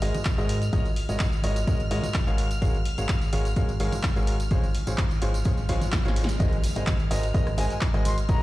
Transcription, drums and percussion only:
0.02 open hi-hat loud
0.14 closed hi-hat soft
0.14 tambourine medium
0.14 high conga loud
0.25 kick loud
0.25 clap loud
0.25 closed hi-hat soft
0.25 tambourine medium
0.38 closed hi-hat soft
0.38 tambourine soft
0.49 open hi-hat loud
0.62 closed hi-hat medium
0.62 tambourine medium
0.73 kick loud
0.73 closed hi-hat medium
0.73 tambourine medium
0.73 high conga medium
0.85 closed hi-hat soft
0.85 tambourine soft
0.96 open hi-hat medium
1.09 closed hi-hat soft
1.09 tambourine medium
1.19 kick loud
1.19 clap loud
1.19 closed hi-hat medium
1.19 tambourine medium
1.33 closed hi-hat soft
1.33 tambourine soft
1.42 open hi-hat loud
1.42 high conga medium
1.56 closed hi-hat medium
1.56 tambourine medium
1.67 kick loud
1.67 closed hi-hat medium
1.67 tambourine medium
1.80 closed hi-hat soft
1.80 tambourine soft
1.91 open hi-hat loud
2.03 closed hi-hat soft
2.03 tambourine medium
2.03 high conga medium
2.14 kick loud
2.14 clap loud
2.14 closed hi-hat medium
2.14 tambourine medium
2.27 closed hi-hat soft
2.27 tambourine soft
2.38 open hi-hat loud
2.51 closed hi-hat medium
2.51 tambourine medium
2.62 kick loud
2.62 closed hi-hat medium
2.62 tambourine medium
2.62 high conga medium
2.74 closed hi-hat soft
2.74 tambourine soft
2.85 open hi-hat loud
2.98 closed hi-hat medium
2.98 tambourine medium
3.09 kick loud
3.09 clap loud
3.09 closed hi-hat medium
3.09 tambourine medium
3.22 closed hi-hat soft
3.22 tambourine soft
3.33 open hi-hat loud
3.33 high conga medium
3.45 closed hi-hat medium
3.45 tambourine medium
3.56 kick loud
3.56 closed hi-hat medium
3.56 tambourine medium
3.69 closed hi-hat soft
3.69 tambourine soft
3.80 open hi-hat medium
3.92 closed hi-hat medium
3.92 tambourine medium
3.92 high conga loud
4.03 kick loud
4.03 clap loud
4.03 closed hi-hat medium
4.03 tambourine medium
4.16 closed hi-hat soft
4.16 tambourine soft
4.27 open hi-hat loud
4.40 closed hi-hat medium
4.40 tambourine medium
4.51 kick loud
4.51 closed hi-hat medium
4.51 tambourine medium
4.51 high conga loud
4.63 closed hi-hat soft
4.63 tambourine soft
4.75 open hi-hat loud
4.87 closed hi-hat medium
4.87 tambourine medium
4.98 kick loud
4.98 clap loud
4.98 closed hi-hat medium
4.98 tambourine medium
5.11 closed hi-hat soft
5.11 tambourine soft
5.22 open hi-hat loud
5.22 high conga medium
5.34 closed hi-hat medium
5.34 tambourine medium
5.45 kick loud
5.45 closed hi-hat medium
5.45 tambourine medium
5.57 closed hi-hat soft
5.57 tambourine soft
5.69 kick medium
5.69 open hi-hat loud
5.81 closed hi-hat medium
5.81 tambourine medium
5.81 high conga medium
5.92 kick loud
5.92 snare medium
5.92 clap loud
5.92 closed hi-hat medium
5.92 tambourine medium
6.05 snare medium
6.05 closed hi-hat soft
6.05 tambourine soft
6.16 open hi-hat loud
6.24 snare loud
6.29 closed hi-hat medium
6.29 tambourine medium
6.40 kick loud
6.40 closed hi-hat medium
6.40 tambourine medium
6.52 closed hi-hat soft
6.52 tambourine soft
6.63 open hi-hat loud
6.63 tambourine medium
6.75 closed hi-hat medium
6.75 tambourine soft
6.87 kick loud
6.87 clap loud
6.87 closed hi-hat medium
6.87 tambourine medium
6.99 closed hi-hat soft
6.99 tambourine soft
7.11 open hi-hat loud
7.11 tambourine medium
7.23 closed hi-hat medium
7.23 tambourine soft
7.34 kick loud
7.34 closed hi-hat medium
7.34 tambourine soft
7.47 cross-stick medium
7.47 closed hi-hat soft
7.47 tambourine soft
7.57 open hi-hat loud
7.57 tambourine medium
7.57 high conga medium
7.70 closed hi-hat medium
7.70 tambourine soft
7.81 kick loud
7.81 clap loud
7.81 closed hi-hat medium
7.81 tambourine medium
7.94 cross-stick medium
7.94 closed hi-hat soft
7.94 tambourine soft
8.05 open hi-hat loud
8.05 tambourine medium
8.05 high conga medium
8.18 closed hi-hat medium
8.18 tambourine soft
8.29 kick loud
8.29 closed hi-hat medium
8.29 tambourine medium

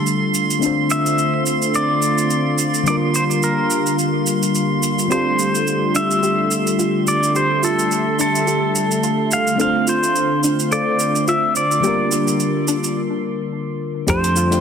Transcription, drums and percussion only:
0.07 shaker soft
0.35 shaker medium
0.50 shaker soft
0.62 shaker soft
0.90 shaker medium
1.06 shaker soft
1.18 shaker soft
1.46 shaker medium
1.62 shaker soft
1.74 shaker soft
2.02 shaker medium
2.18 shaker soft
2.30 shaker soft
2.59 shaker medium
2.74 shaker soft
2.87 shaker soft
3.15 shaker medium
3.31 shaker soft
3.43 shaker soft
3.71 shaker medium
3.87 shaker soft
3.99 shaker soft
4.27 shaker medium
4.43 shaker soft
4.55 shaker soft
4.83 shaker medium
4.99 shaker soft
5.11 shaker soft
5.39 shaker medium
5.55 shaker soft
5.67 shaker soft
5.95 shaker medium
6.11 shaker soft
6.23 shaker soft
6.51 shaker medium
6.67 shaker soft
6.79 shaker soft
7.07 shaker medium
7.23 shaker soft
7.35 shaker soft
7.63 shaker medium
7.79 shaker soft
7.91 shaker soft
8.20 shaker medium
8.35 shaker soft
8.48 shaker soft
8.76 shaker medium
8.91 shaker soft
9.03 shaker soft
9.32 shaker medium
9.47 shaker soft
9.60 shaker soft
9.87 shaker medium
10.04 shaker soft
10.16 shaker soft
10.44 shaker medium
10.60 shaker soft
10.72 shaker soft
11.00 shaker medium
11.16 shaker soft
11.28 shaker soft
11.56 shaker medium
11.72 shaker soft
11.84 shaker soft
12.12 shaker medium
12.28 shaker soft
12.40 shaker soft
12.68 shaker medium
12.84 shaker soft
14.08 kick loud
14.08 open hi-hat medium
14.08 shaker soft
14.24 open hi-hat soft
14.24 shaker soft
14.36 shaker medium
14.52 open hi-hat soft
14.52 shaker soft

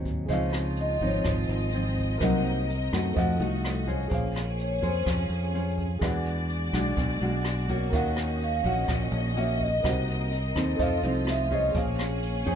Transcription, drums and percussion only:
0.05 kick soft
0.05 closed hi-hat soft
0.29 kick medium
0.29 closed hi-hat soft
0.53 cross-stick medium
0.53 closed hi-hat soft
0.76 closed hi-hat soft
1.01 kick soft
1.01 closed hi-hat soft
1.24 kick medium
1.24 cross-stick medium
1.24 closed hi-hat soft
1.48 closed hi-hat soft
1.72 closed hi-hat soft
1.97 kick soft
1.97 closed hi-hat soft
2.21 kick medium
2.21 cross-stick medium
2.21 closed hi-hat soft
2.45 closed hi-hat soft
2.69 closed hi-hat soft
2.93 kick soft
2.93 cross-stick medium
2.93 closed hi-hat soft
3.17 kick medium
3.17 closed hi-hat soft
3.41 closed hi-hat soft
3.65 cross-stick medium
3.65 closed hi-hat soft
3.87 kick soft
3.87 closed hi-hat soft
4.11 kick medium
4.11 closed hi-hat soft
4.36 cross-stick medium
4.36 closed hi-hat soft
4.59 closed hi-hat soft
4.83 kick soft
4.83 closed hi-hat soft
5.06 kick medium
5.06 cross-stick medium
5.06 closed hi-hat soft
5.31 closed hi-hat soft
5.55 closed hi-hat soft
5.78 kick soft
5.78 closed hi-hat soft
6.02 kick medium
6.02 cross-stick medium
6.02 closed hi-hat soft
6.26 closed hi-hat soft
6.50 closed hi-hat soft
6.73 kick soft
6.73 cross-stick medium
6.73 closed hi-hat soft
6.97 kick medium
6.97 closed hi-hat soft
7.21 closed hi-hat soft
7.44 cross-stick medium
7.44 closed hi-hat soft
7.68 kick soft
7.68 closed hi-hat soft
7.93 kick medium
7.93 closed hi-hat soft
8.16 cross-stick medium
8.16 closed hi-hat soft
8.41 closed hi-hat soft
8.65 kick soft
8.65 closed hi-hat soft
8.88 kick medium
8.88 cross-stick medium
8.88 closed hi-hat soft
9.13 closed hi-hat soft
9.37 closed hi-hat soft
9.60 kick soft
9.60 closed hi-hat soft
9.84 kick medium
9.84 cross-stick medium
9.84 closed hi-hat soft
10.08 closed hi-hat soft
10.32 closed hi-hat soft
10.56 kick soft
10.56 cross-stick medium
10.56 closed hi-hat soft
10.79 kick medium
10.79 closed hi-hat soft
11.03 closed hi-hat soft
11.27 cross-stick medium
11.27 closed hi-hat soft
11.51 kick soft
11.51 closed hi-hat soft
11.74 kick medium
11.74 closed hi-hat soft
11.99 cross-stick medium
11.99 closed hi-hat soft
12.22 closed hi-hat soft
12.46 kick soft
12.46 closed hi-hat soft

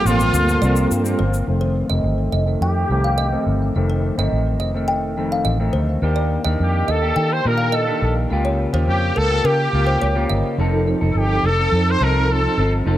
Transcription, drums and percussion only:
0.07 shaker soft
0.20 shaker medium
0.34 shaker medium
0.49 shaker soft
0.63 shaker soft
0.76 shaker medium
0.91 shaker medium
1.05 shaker medium
1.34 shaker soft

